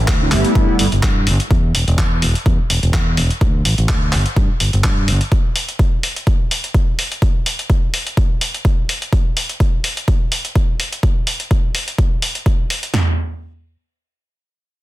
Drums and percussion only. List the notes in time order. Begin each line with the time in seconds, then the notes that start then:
0.08 kick, clap, closed hi-hat
0.32 clap, open hi-hat
0.45 closed hi-hat
0.55 kick, closed hi-hat
0.79 open hi-hat
0.92 closed hi-hat
1.03 kick, clap, closed hi-hat
1.27 open hi-hat
1.40 closed hi-hat
1.51 kick, closed hi-hat
1.75 open hi-hat
1.88 closed hi-hat
1.98 kick, clap
2.22 open hi-hat
2.35 closed hi-hat
2.46 kick, closed hi-hat
2.70 open hi-hat
2.83 closed hi-hat
2.94 kick, clap, closed hi-hat
3.17 open hi-hat
3.30 closed hi-hat
3.41 kick, closed hi-hat
3.65 open hi-hat
3.78 closed hi-hat
3.89 kick, clap, closed hi-hat
4.12 clap, open hi-hat
4.26 closed hi-hat
4.36 kick, closed hi-hat
4.60 open hi-hat
4.73 closed hi-hat
4.84 kick, clap, closed hi-hat
5.08 open hi-hat
5.21 closed hi-hat
5.32 kick, closed hi-hat
5.56 open hi-hat
5.69 closed hi-hat
5.79 kick, closed hi-hat
6.03 open hi-hat
6.16 closed hi-hat
6.27 kick, closed hi-hat
6.51 open hi-hat
6.64 closed hi-hat
6.74 kick, closed hi-hat
6.99 open hi-hat
7.12 closed hi-hat
7.22 kick, closed hi-hat
7.46 open hi-hat
7.59 closed hi-hat
7.70 kick, closed hi-hat
7.94 open hi-hat
8.07 closed hi-hat
8.17 kick, closed hi-hat
8.41 open hi-hat
8.54 closed hi-hat
8.65 kick, closed hi-hat
8.89 open hi-hat
9.02 closed hi-hat
9.13 kick, closed hi-hat
9.37 open hi-hat
9.49 closed hi-hat
9.60 kick, closed hi-hat
9.84 open hi-hat
9.97 closed hi-hat
10.08 kick, closed hi-hat
10.32 open hi-hat
10.45 closed hi-hat
10.56 kick, closed hi-hat
10.80 open hi-hat
10.93 closed hi-hat
11.03 kick, closed hi-hat
11.27 open hi-hat
11.40 closed hi-hat
11.51 kick, closed hi-hat
11.75 open hi-hat
11.88 closed hi-hat
11.98 kick, closed hi-hat
12.22 open hi-hat
12.35 closed hi-hat
12.46 kick, closed hi-hat
12.70 open hi-hat
12.83 closed hi-hat
12.94 snare, floor tom